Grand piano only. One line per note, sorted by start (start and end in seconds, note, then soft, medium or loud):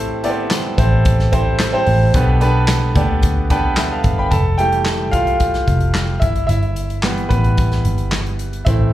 0.00 0.47 A2 medium
0.00 0.13 C4 medium
0.00 0.13 E4 medium
0.00 0.13 G4 medium
0.00 0.13 A4 medium
0.00 0.13 C5 loud
0.23 0.30 B3 medium
0.23 0.66 E4 medium
0.23 0.66 G4 medium
0.23 0.66 A4 medium
0.23 0.66 D5 loud
0.30 0.69 C4 medium
0.78 1.20 C4 medium
0.78 1.20 E4 medium
0.78 1.21 G4 medium
0.78 1.21 A4 medium
0.78 1.21 C5 medium
1.32 1.64 C4 medium
1.32 1.64 E4 medium
1.32 1.64 G4 medium
1.32 1.65 A4 medium
1.32 1.65 C5 medium
1.72 2.05 C4 medium
1.72 2.05 E4 medium
1.72 2.05 G4 medium
1.72 2.05 A4 medium
1.72 2.05 C5 loud
2.14 2.92 B2 medium
2.14 2.35 B3 medium
2.14 2.35 D4 medium
2.14 2.36 G4 medium
2.14 2.36 A4 medium
2.14 2.36 B4 medium
2.41 2.83 B3 medium
2.41 2.83 D4 medium
2.41 2.83 G4 medium
2.41 2.84 A4 medium
2.41 2.84 B4 loud
2.95 3.38 B3 medium
2.95 3.38 D4 medium
2.95 3.38 G4 medium
2.95 3.38 A4 medium
2.95 3.38 D5 medium
3.50 3.82 B3 medium
3.50 3.82 D4 medium
3.50 3.82 G4 medium
3.50 3.82 A4 medium
3.50 3.82 B4 medium
3.50 3.76 G5 medium
3.78 3.91 E5 medium
3.78 3.91 G5 medium
3.78 4.17 B5 medium
3.92 4.17 F5 medium
3.92 4.17 A5 medium
4.19 4.44 G5 medium
4.19 4.44 B5 medium
4.31 4.58 A4 medium
4.31 4.59 A5 medium
4.58 4.95 E3 soft
4.58 4.95 G3 soft
4.58 4.95 A3 medium
4.58 5.10 G4 medium
4.58 5.09 G5 medium
5.11 6.18 F4 medium
5.11 6.17 F5 medium
6.20 6.48 E4 medium
6.20 6.45 E5 medium
6.47 7.27 E4 medium
6.47 7.32 E5 medium
7.03 7.81 E3 medium
7.03 7.81 G3 soft
7.03 7.30 B3 medium
7.29 8.36 B3 medium
7.29 8.35 B4 medium
8.65 8.93 E3 medium
8.65 8.93 A3 soft
8.65 8.93 C4 medium
8.65 8.93 E4 medium
8.65 8.93 E5 medium